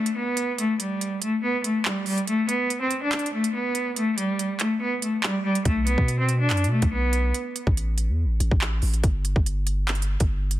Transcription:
Already playing: A3
0.06 closed hi-hat
0.16 B3
0.37 closed hi-hat
0.58 A3, closed hi-hat
0.80 G3, closed hi-hat
1.01 closed hi-hat
1.22 A3, closed hi-hat
1.43 B3
1.64 A3, closed hi-hat
1.85 G3, clap
2.06 G3, open hi-hat
2.18 closed hi-hat
2.27 A3, closed hi-hat
2.49 B3, closed hi-hat
2.70 closed hi-hat
2.81 C4
2.91 closed hi-hat
3.02 D4
3.12 clap, closed hi-hat
3.19 closed hi-hat
3.26 closed hi-hat
3.33 A3
3.44 closed hi-hat
3.54 B3
3.75 closed hi-hat
3.96 A3, closed hi-hat
4.18 G3, closed hi-hat
4.39 closed hi-hat
4.60 A3, clap, closed hi-hat
4.81 B3
5.02 A3, closed hi-hat
5.23 G3, clap
5.44 G3
5.55 closed hi-hat
5.65 B1 A3, kick, closed hi-hat
5.86 B3, closed hi-hat
5.98 B2, kick
6.08 closed hi-hat
6.19 C4
6.29 closed hi-hat
6.40 D4
6.50 F#2, clap, closed hi-hat
6.57 closed hi-hat
6.64 B2, closed hi-hat
6.71 A3
6.82 B1, kick, closed hi-hat
6.92 B3
7.13 closed hi-hat
7.34 closed hi-hat
7.56 closed hi-hat
7.67 A1, kick
7.77 closed hi-hat
7.98 closed hi-hat
8.09 E2
8.25 A1
8.40 A1, closed hi-hat
8.51 A1, kick
8.61 clap
8.82 A1, open hi-hat
8.94 closed hi-hat
9.04 G1, kick, closed hi-hat
9.25 closed hi-hat
9.36 G1, kick
9.46 closed hi-hat
9.67 closed hi-hat
9.88 clap, closed hi-hat
9.95 closed hi-hat
10.02 closed hi-hat
10.20 G1, kick, closed hi-hat
10.51 closed hi-hat

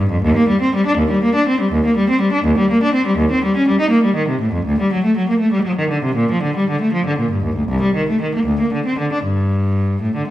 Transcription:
0.10 F2
0.23 D#2
0.37 A#3
0.49 G3
0.61 C4
0.75 G3
0.86 D4
0.98 D#2
1.11 G3
1.23 A#3
1.35 D4
1.48 C4
1.61 G3
1.72 D#2
1.86 A#3
1.97 G3
2.10 C4
2.21 G3
2.33 D4
2.45 D#2
2.58 G3
2.71 A#3
2.83 D4
2.94 C4
3.07 G3
3.18 D#2
3.32 C4
3.44 G3
3.57 C#4
3.68 G3
3.80 D#4
3.90 A#3
4.04 G3
4.16 D#3
4.28 C3
4.41 A2
4.53 F2
4.66 D2
4.80 G3
4.93 F#3
5.04 A3
5.17 F#3
5.29 A#3
5.39 A3
5.52 G3
5.65 F#3
5.78 D#3
5.90 D3
6.04 C3
6.16 A#2
6.31 F3
6.43 D3
6.56 G3
6.70 D3
6.82 A3
6.93 F3
7.06 D3
7.19 A#2
7.31 G2
7.44 D#2
7.56 D2
7.68 C2
7.82 G3
7.95 D#3
8.09 A3
8.21 D#3
8.35 A#3
8.46 D2
8.61 A#3
8.73 D3
8.86 C4
8.99 D3
9.13 D4
9.24 G2
10.02 A2
10.16 D3

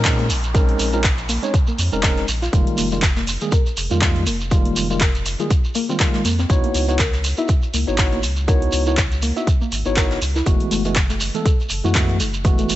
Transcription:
Already playing: A#2, downlifter
0.04 kick, snare, clap, closed hi-hat, shekere
0.19 A#3, closed hi-hat
0.30 A#1, closed hi-hat, open hi-hat, shekere
0.43 closed hi-hat, shekere
0.54 G#3 C4 C#4 D#4 A#4, kick, closed hi-hat, shekere
0.69 closed hi-hat
0.79 A#1, closed hi-hat, open hi-hat, shekere
0.93 G#3 C4 C#4 D#4 F4 A#4, closed hi-hat, shekere
1.04 kick, snare, clap, closed hi-hat, shekere
1.18 closed hi-hat, shekere
1.29 A#3, closed hi-hat, open hi-hat, shekere
1.43 G#3 C4 C#4 D#4 C#5, closed hi-hat, shekere
1.54 kick, closed hi-hat, shekere
1.67 A#3, shekere
1.79 F2, open hi-hat, shekere
1.92 F1 G#3 C4 C#4 D#4 A#4, closed hi-hat, shekere
2.03 D#4 A#4, kick, snare, clap, closed hi-hat, shekere
2.17 snare, closed hi-hat
2.28 A#1, closed hi-hat, open hi-hat, shekere
2.42 F4, snare, closed hi-hat, shekere
2.53 F1 D#3 G3 G#3 A#3 F4, kick, closed hi-hat, shekere
2.67 closed hi-hat
2.77 F1 A#3, open hi-hat, shekere
2.91 D#3 G3 G#3 A#3 F4, closed hi-hat, shekere
3.02 kick, snare, clap, closed hi-hat, shekere
3.16 A#3, snare, closed hi-hat, shekere
3.26 closed hi-hat, open hi-hat, shekere
3.41 D#3 G3 G#3 A#3 G#4, closed hi-hat, shekere
3.52 A#4, kick, closed hi-hat, shekere
3.66 closed hi-hat, shekere
3.77 F1, closed hi-hat, open hi-hat, shekere
3.91 F2 D#3 G3 G#3 A#3 F4, closed hi-hat, shekere
4.01 D#3 G3 G#3 A#3 F4, kick, snare, clap, closed hi-hat, shekere
4.16 closed hi-hat
4.26 F1 A#3, closed hi-hat, open hi-hat, shekere
4.41 shekere
4.51 D#3 G3 G#3 A#3 F4, kick, closed hi-hat, shekere
4.65 A#3, closed hi-hat
4.76 F1, closed hi-hat, open hi-hat, shekere
4.90 D#3 G3 G#3 A#3 F4, closed hi-hat, shekere
5.00 A#4, kick, snare, clap, closed hi-hat, shekere
5.15 closed hi-hat, shekere
5.26 closed hi-hat, open hi-hat, shekere
5.39 D#3 G3 G#3 A#3 F4 G#4, closed hi-hat, shekere
5.50 kick, closed hi-hat, shekere
5.65 shekere
5.74 A#3, closed hi-hat, open hi-hat, shekere
5.89 D#3 G3 G#3 A#3 C4 F4, shekere
6.00 D#3 G3 G#3 A#3 F4, kick, snare, clap, closed hi-hat, shekere
6.14 G#3, snare, closed hi-hat
6.25 F2 A#3, closed hi-hat, open hi-hat, shekere
6.38 C4, snare, closed hi-hat, shekere
6.49 C#2 B3 D#4 E4 F#4 C#5, kick, closed hi-hat, shekere
6.64 A#3, closed hi-hat
6.74 C#2, open hi-hat, shekere
6.88 B3 D#4 E4 F#4 C#5, closed hi-hat, shekere
6.99 A#4, kick, snare, clap, closed hi-hat, shekere
7.13 snare, closed hi-hat, shekere
7.24 closed hi-hat, open hi-hat, shekere
7.37 B3 D#4 E4 F#4 E5, closed hi-hat, shekere
7.48 kick, closed hi-hat, shekere
7.62 closed hi-hat, shekere
7.74 C#2 A#3, closed hi-hat, open hi-hat, shekere
7.87 G#1 B3 D#4 E4 F#4 C#5, closed hi-hat, shekere
7.98 B3 D#4 E4 F#4 C#5, kick, snare, clap, closed hi-hat, shekere
8.12 A#3, closed hi-hat
8.23 C#2, closed hi-hat, open hi-hat, shekere
8.37 closed hi-hat, shekere
8.48 B3 D#4 E4 F#4 A#4 C#5, kick, closed hi-hat, shekere
8.62 closed hi-hat
8.72 C#2, closed hi-hat, open hi-hat, shekere
8.86 B3 D#4 E4 F#4 C#5, shekere
8.97 kick, snare, clap, closed hi-hat, shekere
9.12 closed hi-hat, shekere
9.22 A#3, closed hi-hat, open hi-hat, shekere
9.36 B3 D#4 E4 F#4 E5, closed hi-hat, shekere
9.47 kick, closed hi-hat, shekere
9.61 A#3, shekere
9.72 G#1, open hi-hat, shekere
9.85 G#1 B3 D#4 E4 F#4 C#5, shekere
9.96 B3 D#4 E4 F#4 A#4, kick, snare, clap, closed hi-hat, shekere
10.11 snare, closed hi-hat
10.22 C#2, closed hi-hat, open hi-hat, shekere
10.36 E4, snare, closed hi-hat, shekere
10.46 F#1 E3 G#3 A3 B3 F#4, kick, closed hi-hat, shekere
10.60 closed hi-hat
10.71 F#1 A3, open hi-hat, shekere
10.85 E3 G#3 A3 B3 F#4, closed hi-hat, shekere
10.95 kick, snare, clap, closed hi-hat, shekere
11.10 A3, snare, closed hi-hat, shekere
11.20 closed hi-hat, open hi-hat, shekere
11.34 E3 G#3 A3 B3 A4, closed hi-hat, shekere
11.46 A4, kick, closed hi-hat, shekere
11.60 closed hi-hat, shekere
11.69 F#1, closed hi-hat, open hi-hat, shekere
11.84 F#2 E3 G#3 A3 B3 E4 F#4, closed hi-hat, shekere
11.94 E3 G#3 A3 B3, kick, snare, clap, closed hi-hat, shekere
12.09 closed hi-hat
12.20 F#1 A3, closed hi-hat, open hi-hat, shekere
12.34 closed hi-hat, shekere
12.44 E3 G#3 A3 B3 F#4, kick, closed hi-hat, shekere
12.58 A3, closed hi-hat, shekere
12.69 F#1, closed hi-hat, open hi-hat, shekere

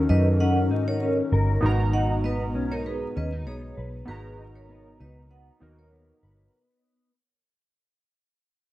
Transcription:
Already playing: D#3 C#4 D#4 F#4 A4 A#4
0.09 F#2 D#4 B4 D#5
0.40 C#4 D#5 F#5
0.71 G#2 D#4
0.88 A#4 C#5
1.02 C#4
1.32 G1 A#4
1.61 G#1 G#2 B3 D#4 F#4
1.66 A#5
1.93 D#4 D#5 F#5
2.24 B3 B4 D#5
2.55 B1 C#4
2.72 D#4 A#4 C#5
2.85 B3 G#4 B4
3.16 D#2 C#4 B4 D#5
3.32 D#4
3.46 B1 B3 G#4 C#5
3.77 B1 B4
4.05 G#1 B3 D#4 F#4 G#4 B4
4.11 A#5
4.38 D#4
4.56 A#4 C#5
4.69 B3
5.00 C#2 D#4 B4 D#5
5.30 B3 D#5 F#5
5.60 D#2 B3 D#4 F#4 A#4
5.79 A#4 C#5
5.92 B3
6.23 G1 B4

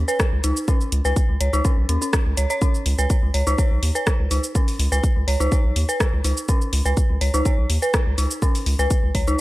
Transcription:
0.08 B4, cabasa
0.20 kick, cross-stick, cabasa
0.32 C#2
0.44 C#2 D#4, closed hi-hat, cabasa
0.57 cabasa
0.68 C#4, kick, cabasa
0.81 cabasa
0.92 C#2, closed hi-hat
1.05 C#2 B4, cabasa
1.16 kick, closed hi-hat, cabasa
1.29 C#2
1.41 C#2 C#5, closed hi-hat
1.53 C#2 D#4, cabasa
1.65 C#4, kick, cabasa
1.77 B1
1.89 D#2 C#4, closed hi-hat
2.02 C#4, cabasa
2.13 kick, cross-stick, cabasa
2.26 C#2
2.37 C#2 C#5, closed hi-hat, cabasa
2.50 C#5, cabasa
2.62 C#4, kick, cabasa
2.74 cabasa
2.86 C#2, open hi-hat
2.99 C#2 B4, cabasa
3.10 kick, closed hi-hat, cabasa
3.23 C#2
3.34 C#2 C#5, open hi-hat
3.47 C#2 D#4, cabasa
3.58 C#5, kick, cabasa
3.71 B1
3.83 D#2, open hi-hat
3.95 B4, cabasa
4.07 kick, cross-stick, cabasa
4.20 C#2
4.31 C#2 D#4, open hi-hat, cabasa
4.44 cabasa
4.55 C#4, kick, cabasa
4.68 open hi-hat, cabasa
4.79 C#2, open hi-hat
4.92 C#2 B4, cabasa
5.04 kick, closed hi-hat, cabasa
5.16 C#2
5.28 C#2 C#5, open hi-hat
5.40 C#2 D#4, cabasa
5.52 C#5, kick, cabasa
5.64 B1
5.76 D#2, open hi-hat
5.89 B4, cabasa
6.00 kick, cross-stick, cabasa
6.13 C#2
6.24 C#2 D#4, open hi-hat, cabasa
6.37 cabasa
6.49 C#4, kick, cabasa
6.61 cabasa
6.73 C#2, open hi-hat
6.85 C#2 B4, cabasa
6.97 kick, closed hi-hat, cabasa
7.10 C#2
7.21 C#2 C#5, open hi-hat
7.34 C#2 D#4, cabasa
7.45 C#5, kick, cabasa
7.58 B1
7.70 D#2, open hi-hat
7.82 B4, cabasa
7.94 kick, cross-stick, cabasa
8.06 C#2
8.18 C#2 D#4, open hi-hat, cabasa
8.31 cabasa
8.42 C#4, kick, cabasa
8.55 open hi-hat, cabasa
8.66 C#2, open hi-hat
8.79 C#2 B4, cabasa
8.91 kick, closed hi-hat, cabasa
9.03 C#2
9.15 C#2 C#5, kick, open hi-hat
9.27 C#2 D#4, cabasa

